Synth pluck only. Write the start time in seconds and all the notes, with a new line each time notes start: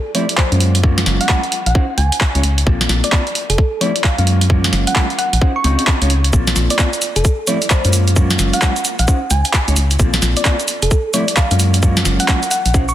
Already playing: A4
0.15 D5
0.38 C5
1.21 F#5
1.67 F#5
1.98 G#5
3.04 D5
3.50 A4
3.81 D5
4.04 F5
4.19 F5
4.87 F#5
5.18 F#5
5.56 C#6
5.64 C#6
6.71 D5
7.16 A4
7.48 D5
7.70 C5
8.54 F#5
8.99 F#5
9.31 G#5
10.37 D5
10.83 A4
11.14 D5
11.37 F5
11.51 F5
12.20 F#5
12.51 F#5
12.89 C#6